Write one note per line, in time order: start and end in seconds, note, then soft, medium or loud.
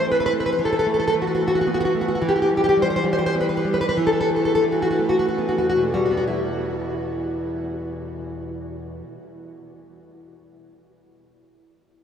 0.00 0.55 E3 soft
0.00 0.32 A3 soft
0.06 0.60 C4 soft
0.12 0.19 B4 soft
0.20 0.25 B4 medium
0.26 0.33 B4 medium
0.33 0.57 A3 soft
0.40 0.45 B4 medium
0.46 0.51 B4 medium
0.53 0.60 B4 medium
0.59 2.17 E3 soft
0.65 0.71 A4 soft
0.73 0.78 A4 medium
0.79 0.86 A4 medium
0.86 1.13 A3 soft
0.94 0.98 A4 soft
1.00 1.06 A4 medium
1.08 1.14 A4 medium
1.14 1.41 A3 soft
1.22 1.26 F#4 soft
1.27 1.33 F#4 soft
1.35 1.41 F#4 soft
1.43 1.93 A3 soft
1.48 1.54 F#4 soft
1.55 1.60 F#4 soft
1.61 1.67 F#4 soft
1.67 2.22 B3 soft
1.74 1.79 F#4 soft
1.81 1.84 F#4 medium
1.85 1.93 F#4 medium
1.95 2.19 A3 soft
2.01 2.07 F#4 soft
2.08 2.14 F#4 soft
2.15 2.22 F#4 soft
2.22 3.92 E3 soft
2.29 2.35 G4 medium
2.36 2.41 G4 medium
2.42 2.49 G4 medium
2.50 2.76 G3 soft
2.57 2.63 G4 medium
2.64 2.68 G4 medium
2.69 2.76 G4 medium
2.77 3.03 G3 soft
2.82 2.89 C5 medium
2.90 2.95 C5 medium
2.96 3.04 C5 medium
3.04 3.63 G3 soft
3.13 3.17 C5 medium
3.19 3.25 C5 medium
3.26 3.34 C5 medium
3.35 3.96 B3 soft
3.41 3.48 B4 medium
3.49 3.56 B4 medium
3.57 3.65 B4 medium
3.65 3.93 G3 soft
3.74 3.80 B4 soft
3.81 3.88 B4 soft
3.89 3.96 B4 medium
3.97 6.25 E3 soft
4.07 4.12 A4 medium
4.13 4.19 A4 medium
4.21 4.29 A4 medium
4.30 4.62 A3 soft
4.36 4.44 A4 soft
4.45 4.54 A4 medium
4.55 4.63 A4 medium
4.64 4.98 A3 soft
4.72 4.81 F#4 soft
4.82 4.89 F#4 soft
4.91 5.00 F#4 soft
4.99 5.81 A3 soft
5.09 5.18 F#4 soft
5.19 5.27 F#4 soft
5.29 5.39 F#4 soft
5.38 6.10 B3 soft
5.49 5.57 F#4 soft
5.58 9.01 E2 soft
5.58 5.68 F#4 soft
5.70 5.83 F#4 soft
5.76 9.17 B2 soft
5.82 5.94 A3 soft
5.94 9.35 G3 soft
5.94 6.04 F#4 soft
6.06 6.16 F#4 soft
6.11 9.52 B3 soft
6.17 6.27 F#4 soft
6.28 9.68 E4 soft